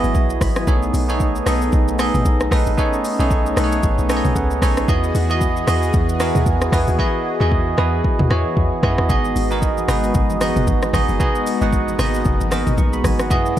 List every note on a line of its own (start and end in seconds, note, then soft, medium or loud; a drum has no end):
0.00 0.14 G#1 medium
0.00 0.63 F#3 medium
0.00 0.63 B3 medium
0.00 0.67 B3 loud
0.00 0.63 E4 medium
0.00 0.69 E4 medium
0.00 0.69 F#4 medium
0.00 0.68 G#4 medium
0.00 0.69 D#5 loud
0.00 0.69 F#5 loud
0.00 shaker medium
0.15 0.39 B1 loud
0.15 0.40 G#5 medium
0.15 kick medium
0.15 shaker medium
0.30 shaker medium
0.41 0.65 G#1 loud
0.41 0.56 B5 medium
0.41 kick loud
0.41 cross-stick loud
0.41 open hi-hat medium
0.41 shaker medium
0.56 0.81 G#5 medium
0.56 cross-stick loud
0.56 shaker medium
0.67 0.91 B1 loud
0.67 4.84 A3 medium
0.67 1.00 B3 loud
0.67 2.76 B3 medium
0.67 1.00 D#4 medium
0.67 4.85 D#4 medium
0.67 1.00 G#4 medium
0.67 1.00 A4 medium
0.67 1.00 C#5 loud
0.67 kick loud
0.67 shaker medium
0.83 shaker medium
0.94 1.42 B1 loud
0.94 open hi-hat medium
0.94 shaker medium
1.09 1.40 B3 medium
1.09 1.40 D#4 medium
1.09 1.40 G#4 medium
1.09 1.40 A4 medium
1.09 1.40 C#5 loud
1.09 shaker medium
1.20 kick loud
1.20 shaker medium
1.36 shaker medium
1.46 1.70 B1 medium
1.46 1.90 B3 medium
1.46 1.90 D#4 medium
1.46 1.90 G#4 medium
1.46 1.90 A4 medium
1.46 1.90 D#5 loud
1.46 cross-stick loud
1.46 open hi-hat medium
1.46 shaker medium
1.62 shaker medium
1.72 2.10 B1 loud
1.72 kick loud
1.72 shaker medium
1.88 shaker medium
1.99 2.43 B3 medium
1.99 2.43 D#4 medium
1.99 2.43 G#4 medium
1.99 2.43 A4 medium
1.99 2.43 D#5 loud
1.99 cross-stick loud
1.99 open hi-hat medium
1.99 shaker medium
2.14 2.24 A1 medium
2.14 mid tom medium
2.14 shaker medium
2.25 2.49 B1 loud
2.25 kick loud
2.25 shaker medium
2.40 cross-stick loud
2.40 shaker medium
2.51 2.65 B1 loud
2.51 2.73 B3 loud
2.51 2.73 D#4 medium
2.51 2.74 G#4 medium
2.51 2.74 A4 medium
2.51 2.74 B4 loud
2.51 kick loud
2.51 cross-stick loud
2.51 open hi-hat medium
2.51 shaker medium
2.67 2.77 A1 medium
2.67 shaker medium
2.77 3.10 B3 loud
2.77 4.86 C#4 medium
2.77 3.10 D#4 medium
2.77 3.10 G#4 medium
2.77 3.10 A4 medium
2.77 3.11 C#5 loud
2.77 kick loud
2.77 shaker medium
2.93 shaker medium
3.05 open hi-hat medium
3.05 shaker medium
3.19 3.53 B1 loud
3.19 3.50 B3 medium
3.19 3.50 D#4 medium
3.19 3.50 G#4 medium
3.19 3.50 A4 medium
3.19 3.51 C#5 loud
3.19 shaker medium
3.31 kick loud
3.31 shaker medium
3.46 shaker medium
3.56 3.81 B1 loud
3.56 4.00 B3 medium
3.56 4.01 D#4 medium
3.56 4.01 G#4 medium
3.56 4.01 A4 medium
3.56 3.65 B4 medium
3.56 cross-stick loud
3.56 open hi-hat medium
3.56 shaker medium
3.64 4.04 C#5 loud
3.72 shaker medium
3.83 3.97 A1 loud
3.83 kick loud
3.83 shaker medium
3.98 4.22 B1 medium
3.98 shaker medium
4.09 4.53 B3 medium
4.09 4.53 D#4 medium
4.09 4.53 G#4 medium
4.09 4.53 A4 medium
4.09 4.17 C#5 medium
4.09 4.34 G#5 medium
4.09 cross-stick loud
4.09 open hi-hat medium
4.09 shaker medium
4.16 4.57 D#5 loud
4.25 4.35 B1 medium
4.25 mid tom medium
4.25 shaker medium
4.36 4.60 C#2 loud
4.36 4.60 F#5 medium
4.36 kick medium
4.36 shaker medium
4.51 shaker soft
4.62 4.86 B1 medium
4.62 4.84 B3 loud
4.62 4.84 D#4 medium
4.62 4.84 G#4 medium
4.62 4.84 A4 medium
4.62 4.84 C#5 loud
4.62 4.87 D#5 medium
4.62 kick loud
4.62 cross-stick loud
4.62 open hi-hat medium
4.62 shaker loud
4.77 cross-stick loud
4.77 shaker medium
4.88 5.12 E2 loud
4.88 9.06 E3 medium
4.88 5.21 B3 loud
4.88 5.21 E4 medium
4.88 5.21 F#4 medium
4.88 13.27 F#4 medium
4.88 9.06 G#4 medium
4.88 5.21 G#4 medium
4.88 13.27 D#5 medium
4.88 5.21 D#5 loud
4.88 kick loud
4.88 shaker medium
5.04 shaker medium
5.15 5.63 E2 loud
5.15 open hi-hat medium
5.15 shaker medium
5.30 5.61 B3 medium
5.30 5.61 E4 medium
5.30 5.61 F#4 medium
5.30 5.61 G#4 medium
5.30 5.61 D#5 loud
5.30 shaker medium
5.41 kick loud
5.41 shaker medium
5.57 shaker medium
5.67 5.91 E2 loud
5.67 6.11 B3 loud
5.67 6.11 E4 medium
5.67 6.11 F#4 medium
5.67 6.11 G#4 medium
5.67 6.12 D#5 loud
5.67 cross-stick loud
5.67 open hi-hat medium
5.67 shaker medium
5.83 shaker medium
5.93 6.32 E2 loud
5.93 kick loud
5.93 shaker medium
6.09 shaker medium
6.20 6.64 B3 loud
6.20 6.64 E4 medium
6.20 6.64 F#4 medium
6.20 6.64 G#4 medium
6.20 6.64 A#4 loud
6.20 cross-stick loud
6.20 open hi-hat medium
6.20 shaker medium
6.35 6.45 D#2 medium
6.35 mid tom medium
6.35 shaker medium
6.46 6.70 E2 medium
6.46 kick medium
6.46 shaker medium
6.61 cross-stick loud
6.61 shaker medium
6.72 6.86 E2 medium
6.72 6.94 B3 medium
6.72 6.94 E4 medium
6.72 6.95 F#4 medium
6.72 6.95 G#4 medium
6.72 6.95 B4 loud
6.72 kick loud
6.72 cross-stick loud
6.72 open hi-hat medium
6.72 shaker loud
6.87 6.98 D#2 medium
6.87 shaker medium
6.98 7.31 B3 loud
6.98 7.31 E4 medium
6.98 7.31 F#4 medium
6.98 7.32 G#4 medium
6.98 7.32 D#5 loud
6.98 kick loud
7.40 7.74 E2 loud
7.40 7.71 B3 loud
7.40 7.71 E4 medium
7.40 7.71 F#4 medium
7.40 7.71 G#4 medium
7.40 7.72 D#5 loud
7.52 kick loud
7.77 8.02 E2 loud
7.77 8.21 B3 medium
7.77 8.22 E4 medium
7.77 8.22 F#4 medium
7.77 8.22 G#4 medium
7.77 8.22 B4 loud
7.77 cross-stick loud
8.04 kick loud
8.19 8.29 D#2 medium
8.19 mid tom medium
8.30 8.44 E2 loud
8.30 8.74 B3 medium
8.30 8.74 E4 medium
8.30 8.74 F#4 medium
8.30 8.75 G#4 medium
8.30 8.75 C#5 loud
8.30 cross-stick loud
8.57 8.71 E2 loud
8.57 kick medium
8.83 8.97 F#2 medium
8.83 9.05 B3 loud
8.83 9.05 E4 medium
8.83 9.05 F#4 medium
8.83 9.05 G#4 medium
8.83 9.05 D#5 loud
8.83 kick loud
8.83 cross-stick loud
8.98 9.08 E2 medium
8.98 cross-stick loud
9.09 9.33 G#1 loud
9.09 13.27 G#3 medium
9.09 9.42 B3 medium
9.09 13.27 B3 medium
9.09 9.42 D#4 medium
9.09 9.42 F#4 medium
9.09 9.42 G#4 medium
9.09 9.42 D#5 loud
9.09 kick loud
9.09 low conga medium
9.09 shaker medium
9.25 shaker medium
9.36 9.84 G#1 loud
9.36 open hi-hat medium
9.36 shaker loud
9.51 9.82 B3 medium
9.51 9.82 D#4 medium
9.51 9.82 F#4 medium
9.51 9.82 G#4 medium
9.51 9.82 A#4 loud
9.51 shaker medium
9.62 kick loud
9.62 shaker medium
9.78 high conga soft
9.78 shaker medium
9.88 10.12 G#1 loud
9.88 10.32 B3 medium
9.88 10.32 D#4 medium
9.88 10.32 F#4 medium
9.88 10.32 G#4 medium
9.88 10.33 B4 loud
9.88 cross-stick loud
9.88 open hi-hat medium
9.88 low conga medium
9.88 shaker medium
10.04 shaker medium
10.14 10.53 G#1 loud
10.14 kick loud
10.14 low conga medium
10.14 shaker medium
10.30 high conga medium
10.30 shaker medium
10.40 10.85 B3 medium
10.40 10.85 D#4 medium
10.40 10.85 F#4 medium
10.40 10.85 G#4 medium
10.40 10.85 D#5 loud
10.40 cross-stick loud
10.40 open hi-hat medium
10.40 high conga medium
10.40 shaker medium
10.56 10.66 F#1 medium
10.56 mid tom medium
10.56 shaker medium
10.67 10.91 G#1 medium
10.67 kick loud
10.67 high conga medium
10.67 shaker medium
10.82 cross-stick loud
10.82 shaker soft
10.93 11.07 G#1 loud
10.93 11.15 B3 medium
10.93 11.15 D#4 medium
10.93 11.16 F#4 medium
10.93 11.16 G#4 medium
10.93 11.16 D#5 loud
10.93 kick loud
10.93 cross-stick loud
10.93 open hi-hat medium
10.93 high conga medium
10.93 low conga medium
10.93 shaker medium
11.08 11.19 F#1 medium
11.08 shaker medium
11.19 11.52 B3 medium
11.19 11.52 D#4 medium
11.19 11.52 F#4 medium
11.19 11.53 G#4 medium
11.19 11.53 D#5 loud
11.19 kick loud
11.19 low conga medium
11.19 shaker medium
11.35 shaker medium
11.46 open hi-hat medium
11.46 shaker medium
11.61 11.95 G#1 loud
11.61 11.92 B3 medium
11.61 11.92 D#4 medium
11.61 11.92 F#4 medium
11.61 11.93 G#4 medium
11.61 11.93 F#5 loud
11.61 shaker medium
11.73 kick loud
11.73 shaker medium
11.88 high conga soft
11.88 shaker medium
11.98 12.23 G#1 loud
11.98 12.06 A#3 medium
11.98 12.43 D#4 medium
11.98 12.43 F#4 medium
11.98 12.43 G#4 medium
11.98 12.43 D#5 loud
11.98 cross-stick loud
11.98 open hi-hat medium
11.98 low conga medium
11.98 shaker medium
12.05 12.46 B3 medium
12.14 shaker medium
12.25 12.39 F#1 loud
12.25 kick loud
12.25 low conga medium
12.25 shaker medium
12.40 12.64 G#1 medium
12.40 high conga medium
12.40 shaker medium
12.51 12.95 B3 loud
12.51 12.95 D#4 medium
12.51 12.95 F#4 medium
12.51 12.96 G#4 medium
12.51 12.96 A#4 loud
12.51 cross-stick loud
12.51 open hi-hat medium
12.51 high conga medium
12.51 shaker medium
12.67 12.77 G#1 medium
12.67 mid tom medium
12.67 shaker medium
12.78 13.02 B1 loud
12.78 12.92 C#6 medium
12.78 kick medium
12.78 high conga medium
12.78 shaker medium
12.93 13.04 B5 medium
12.93 shaker medium
13.04 13.32 G#1 loud
13.04 13.19 G#5 medium
13.04 kick loud
13.04 cross-stick loud
13.04 open hi-hat medium
13.04 high conga medium
13.04 low conga medium
13.04 shaker medium
13.19 13.45 F#5 medium
13.19 cross-stick loud
13.19 shaker medium
13.30 13.54 F#2 loud
13.30 13.59 F#3 medium
13.30 13.59 B3 loud
13.30 13.59 B3 medium
13.30 13.59 E4 medium
13.30 13.59 F#4 medium
13.30 13.59 G#4 medium
13.30 13.59 D#5 loud
13.30 kick loud
13.30 low conga medium
13.30 shaker medium
13.46 shaker medium